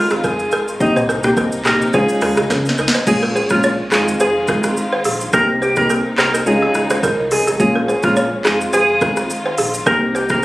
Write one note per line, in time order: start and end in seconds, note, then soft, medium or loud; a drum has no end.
0.00 0.79 D#3 medium
0.00 0.17 G#3 medium
0.00 0.79 G#3 medium
0.00 0.18 C4 medium
0.00 0.18 D#4 medium
0.00 0.18 F4 medium
0.00 0.79 F4 medium
0.10 0.21 G#1 medium
0.10 0.18 G#4 medium
0.10 cross-stick loud
0.10 shaker medium
0.24 0.46 F1 medium
0.24 0.66 G#4 medium
0.24 0.32 A#4 medium
0.24 kick medium
0.24 shaker medium
0.39 shaker soft
0.51 0.74 G#1 loud
0.51 0.60 A#4 medium
0.51 shaker medium
0.68 shaker medium
0.80 1.77 C2 loud
0.80 1.93 C3 medium
0.80 1.02 A#3 medium
0.80 1.93 A#3 medium
0.80 1.02 C4 medium
0.80 1.02 D#4 medium
0.80 3.05 D#4 medium
0.80 0.94 D#4 loud
0.80 1.03 G4 loud
0.80 kick loud
0.80 shaker medium
0.96 1.03 C5 medium
0.96 mid tom loud
0.96 shaker medium
1.09 1.17 A#4 medium
1.09 shaker soft
1.23 1.45 A#3 medium
1.23 1.45 C4 medium
1.23 1.45 D#4 medium
1.23 1.45 G4 medium
1.23 1.36 G4 medium
1.23 cross-stick loud
1.23 mid tom loud
1.23 shaker soft
1.37 1.45 A#4 medium
1.37 kick loud
1.37 shaker medium
1.52 shaker medium
1.65 1.87 A#3 medium
1.65 1.87 C4 medium
1.65 1.88 D#4 medium
1.65 1.74 G4 medium
1.65 1.88 G4 medium
1.65 1.79 A#4 medium
1.65 cross-stick loud
1.65 clap loud
1.65 mid tom medium
1.65 shaker medium
1.81 1.91 A#1 medium
1.81 shaker medium
1.93 2.06 C#2 loud
1.93 3.06 C#3 medium
1.93 3.06 F3 medium
1.93 2.20 G#3 loud
1.93 2.20 C#4 medium
1.93 2.20 D#4 medium
1.93 2.20 F4 loud
1.93 2.35 G#4 loud
1.93 2.02 C5 medium
1.93 kick loud
1.93 shaker medium
2.09 shaker medium
2.21 2.34 D#2 loud
2.21 2.44 G#3 medium
2.21 2.44 C#4 medium
2.21 2.44 D#4 medium
2.21 2.44 F4 medium
2.21 2.30 A#4 medium
2.21 cross-stick loud
2.21 open hi-hat medium
2.21 shaker medium
2.37 2.47 C#2 medium
2.37 2.44 G#4 medium
2.37 cross-stick loud
2.37 shaker medium
2.50 2.72 C#3 loud
2.50 2.58 A#4 medium
2.50 kick loud
2.50 snare medium
2.50 shaker medium
2.66 snare medium
2.66 shaker soft
2.78 2.91 C#2 loud
2.78 2.92 D#4 medium
2.78 2.87 A#4 medium
2.78 shaker medium
2.88 snare loud
2.94 3.01 C5 medium
2.94 shaker medium
3.07 3.41 A#1 loud
3.07 3.91 A#2 medium
3.07 3.29 G#3 medium
3.07 5.31 G#3 medium
3.07 3.29 A#3 medium
3.07 3.91 C#4 medium
3.07 3.29 C#4 medium
3.07 3.29 F4 loud
3.07 3.21 G#4 loud
3.07 kick loud
3.07 crash loud
3.07 shaker medium
3.23 3.29 A#4 medium
3.36 3.49 G#4 medium
3.36 3.43 C5 medium
3.36 shaker soft
3.50 3.83 A#1 loud
3.50 3.71 G#3 medium
3.50 3.71 A#3 medium
3.50 3.71 C#4 medium
3.50 3.71 F4 medium
3.50 3.62 F4 medium
3.50 kick medium
3.50 cross-stick loud
3.50 shaker medium
3.63 3.72 C#5 medium
3.63 shaker medium
3.92 4.14 F1 loud
3.92 5.32 D#3 medium
3.92 4.14 G#3 medium
3.92 4.14 C4 medium
3.92 4.14 D#4 medium
3.92 5.32 F4 medium
3.92 4.14 F4 medium
3.92 4.05 G#4 medium
3.92 cross-stick loud
3.92 clap loud
3.92 shaker medium
4.08 shaker medium
4.20 4.54 F1 loud
4.20 4.62 G#4 loud
4.20 4.28 C5 medium
4.20 shaker medium
4.48 4.70 G#3 medium
4.48 4.70 C4 medium
4.48 4.70 D#4 medium
4.48 4.71 F4 medium
4.48 4.57 A#4 medium
4.48 kick loud
4.48 cross-stick loud
4.48 shaker medium
4.63 4.74 G#1 medium
4.63 cross-stick loud
4.63 shaker medium
4.77 shaker medium
4.93 4.99 C5 medium
5.04 5.27 A#1 loud
5.04 5.13 G#4 medium
5.04 open hi-hat medium
5.04 shaker medium
5.21 shaker medium
5.33 6.02 C2 loud
5.33 6.45 C3 medium
5.33 5.55 A#3 medium
5.33 6.45 A#3 medium
5.33 5.55 C4 medium
5.33 7.57 D#4 medium
5.33 5.55 D#4 medium
5.33 5.55 G4 loud
5.33 5.41 A#4 loud
5.33 5.47 A#4 loud
5.33 kick loud
5.33 shaker medium
5.62 5.75 G4 medium
5.62 5.70 C5 medium
5.62 shaker soft
5.76 5.97 A#3 medium
5.76 5.98 C4 medium
5.76 5.98 D#4 medium
5.76 5.98 G4 medium
5.76 5.88 A#4 medium
5.76 kick medium
5.76 cross-stick loud
5.76 shaker medium
5.90 5.98 A#4 medium
5.90 shaker medium
6.18 6.40 C2 loud
6.18 6.40 A#3 medium
6.18 6.40 C4 medium
6.18 6.40 D#4 medium
6.18 6.40 G4 medium
6.18 6.32 A#4 medium
6.18 6.26 C5 medium
6.18 cross-stick loud
6.18 clap loud
6.18 shaker medium
6.34 6.40 A#4 medium
6.34 shaker medium
6.46 6.68 C#2 loud
6.46 7.58 C#3 medium
6.46 7.58 F3 medium
6.46 6.73 G#3 loud
6.46 6.73 C#4 medium
6.46 6.73 D#4 medium
6.46 6.73 F4 loud
6.46 6.88 G#4 loud
6.46 shaker medium
6.62 6.69 G#4 medium
6.74 7.09 G#1 loud
6.74 6.97 G#3 medium
6.74 6.97 C#4 medium
6.74 6.97 D#4 medium
6.74 6.97 F4 medium
6.74 cross-stick medium
6.74 shaker medium
6.90 6.99 C5 medium
6.90 cross-stick loud
6.90 shaker medium
7.03 7.11 A#4 medium
7.03 kick loud
7.03 shaker medium
7.19 7.41 C2 medium
7.31 7.40 G#4 medium
7.31 7.45 G#4 medium
7.31 open hi-hat medium
7.31 shaker medium
7.47 7.57 G#1 medium
7.47 7.54 G#4 medium
7.47 shaker medium
7.60 7.94 A#1 loud
7.60 8.44 A#2 medium
7.60 7.82 G#3 medium
7.60 8.43 G#3 medium
7.60 7.82 A#3 medium
7.60 7.82 C#4 medium
7.60 8.44 C#4 medium
7.60 7.82 F4 loud
7.60 7.73 G#4 loud
7.60 kick loud
7.60 shaker medium
7.75 7.82 A#4 medium
7.88 8.02 G#4 medium
7.88 7.96 C5 medium
7.88 shaker soft
8.03 8.36 A#1 loud
8.03 8.24 G#3 medium
8.03 8.24 A#3 medium
8.03 8.24 C#4 medium
8.03 8.24 F4 medium
8.03 8.15 F4 medium
8.03 kick medium
8.03 cross-stick loud
8.03 shaker medium
8.16 8.25 C#5 medium
8.16 shaker medium
8.44 8.67 F1 loud
8.44 9.85 D#3 medium
8.44 9.85 G#3 medium
8.44 8.67 G#3 medium
8.44 8.67 C4 medium
8.44 8.67 D#4 medium
8.44 9.85 F4 medium
8.44 8.67 F4 medium
8.44 8.58 G#4 loud
8.44 cross-stick loud
8.44 clap loud
8.44 shaker medium
8.61 shaker medium
8.73 9.07 F1 loud
8.73 9.15 G#4 loud
8.73 8.81 C5 medium
8.73 shaker medium
9.01 9.23 G#3 medium
9.01 9.23 C4 medium
9.01 9.23 D#4 medium
9.01 9.23 F4 medium
9.01 9.09 A#4 medium
9.01 kick loud
9.01 cross-stick medium
9.01 shaker medium
9.17 9.27 G#1 medium
9.17 cross-stick loud
9.17 shaker medium
9.30 shaker medium
9.46 9.52 C5 medium
9.58 9.80 A#1 loud
9.58 9.66 G#4 medium
9.58 open hi-hat medium
9.58 shaker medium
9.74 shaker medium
9.86 10.45 C2 loud
9.86 10.45 C3 medium
9.86 10.08 A#3 medium
9.86 10.45 A#3 medium
9.86 10.08 C4 medium
9.86 10.08 D#4 medium
9.86 10.45 D#4 medium
9.86 10.08 G4 loud
9.86 9.94 A#4 loud
9.86 10.00 A#4 loud
9.86 kick loud
9.86 shaker medium
10.15 10.28 G4 medium
10.15 10.23 C5 medium
10.15 shaker soft
10.29 10.45 A#3 medium
10.29 10.45 C4 medium
10.29 10.45 D#4 medium
10.29 10.45 G4 medium
10.29 10.41 A#4 medium
10.29 kick medium
10.29 cross-stick loud
10.29 shaker medium